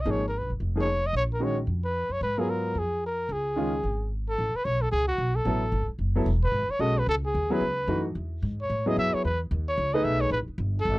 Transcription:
0.01 trumpet D#5
0.05 upright bass G#1, grand piano F3 A#3 D#4 G#4
0.11 trumpet C#5
0.28 trumpet A#4
0.38 upright bass A#1, trumpet B4
0.50 upright bass G1
0.60 upright bass F1
0.76 grand piano F3 A#3 D#4 G#4
0.80 trumpet C#5
1.06 trumpet D#5
1.13 upright bass A#1, trumpet C#5
1.34 trumpet A#4
1.40 grand piano D#3 G#3 C#4 F#4, trumpet C#5
1.67 upright bass F2
1.85 trumpet B4
2.09 upright bass F#2, trumpet C#5
2.21 upright bass G#2, trumpet B4
2.38 grand piano F#3 B3 F4 A#4, trumpet G#4
2.50 trumpet A#4
2.75 upright bass F2, trumpet G#4
3.06 trumpet A#4
3.29 upright bass C#2, trumpet G#4
3.56 grand piano D#3 G#3 C#4 F4
3.83 upright bass G#1
4.28 trumpet A4
4.38 upright bass A1
4.54 trumpet B4, muted upright bass stroke
4.65 upright bass B1, trumpet C#5
4.82 trumpet A4
4.92 upright bass C#2, trumpet G#4
5.08 trumpet F#4
5.18 upright bass B1
5.36 trumpet A4
5.45 upright bass A1, grand piano F#3 B3 E4 A4
5.72 upright bass G#1
5.88 muted upright bass stroke
5.99 upright bass F#1
6.15 grand piano F#3 B3 E4 A4
6.26 upright bass E1
6.44 trumpet B4
6.52 upright bass G#1
6.69 trumpet C#5, muted upright bass stroke
6.79 upright bass B1, grand piano G#3 C#4 F#4 A4, trumpet D#5
6.99 trumpet B4
7.07 upright bass C#2, trumpet A4
7.25 trumpet G#4
7.34 upright bass D#2
7.50 grand piano F#3 B3 E4 G#4, trumpet B4
7.61 upright bass C#2
7.87 upright bass F#2, grand piano E3 A3 D#4 F#4
8.15 upright bass E2
8.42 upright bass G#2
8.62 trumpet C#5
8.70 upright bass A2
8.86 grand piano F#3 B3 E4 G#4, trumpet D#5
8.97 upright bass F#2, trumpet E5
9.14 trumpet C#5, muted upright bass stroke
9.24 upright bass E2, trumpet B4
9.51 upright bass D#2
9.68 trumpet C#5
9.78 upright bass C#2
9.94 grand piano A3 D#4 G#4 B4, trumpet D#5
10.04 upright bass B1, trumpet E5
10.21 trumpet C#5
10.31 upright bass A1, trumpet B4
10.48 muted upright bass stroke
10.58 upright bass G1
10.80 trumpet A4
10.85 upright bass G#1

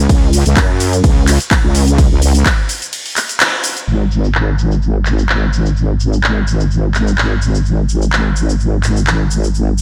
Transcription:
0.09 wobble bass C#2, kick, closed hi-hat, ride, cabasa
0.33 open hi-hat, cabasa
0.46 wobble bass C#2, closed hi-hat, cabasa
0.57 wobble bass F#2, kick, clap, closed hi-hat, ride, cabasa
0.80 open hi-hat, cabasa
0.93 closed hi-hat, cabasa
1.04 wobble bass C#2, kick, closed hi-hat, ride, cabasa
1.27 clap, open hi-hat, cabasa
1.40 closed hi-hat, cabasa
1.51 kick, clap, closed hi-hat, ride, cabasa
1.64 wobble bass C#2
1.75 open hi-hat, cabasa
1.88 closed hi-hat, cabasa
1.98 kick, closed hi-hat, ride, cabasa
2.11 wobble bass C#2
2.22 open hi-hat, cabasa
2.35 closed hi-hat, cabasa
2.46 kick, clap, closed hi-hat, ride, cabasa
2.69 open hi-hat, cabasa
2.82 closed hi-hat, cabasa
2.93 closed hi-hat, ride, cabasa
3.06 open hi-hat
3.16 clap, open hi-hat, cabasa
3.29 closed hi-hat, cabasa
3.40 clap, closed hi-hat, ride, cabasa
3.64 open hi-hat, cabasa
3.77 closed hi-hat, cabasa
3.87 wobble bass G#1, cabasa
4.11 cabasa
4.24 cabasa
4.35 clap, cabasa
4.59 cabasa
4.72 cabasa
4.82 cabasa
5.06 clap, cabasa
5.19 cabasa
5.29 clap, cabasa
5.53 cabasa
5.66 cabasa
5.77 cabasa
6.00 cabasa
6.13 cabasa
6.24 clap, cabasa
6.48 cabasa
6.60 cabasa
6.71 cabasa
6.95 clap, cabasa
7.08 cabasa
7.18 clap, cabasa
7.42 cabasa
7.55 cabasa
7.66 cabasa
7.89 cabasa
8.02 cabasa
8.13 clap, cabasa
8.36 cabasa
8.49 cabasa
8.60 cabasa
8.84 clap, cabasa
8.97 cabasa
9.07 clap, cabasa
9.31 cabasa
9.44 cabasa
9.55 cabasa
9.78 cabasa

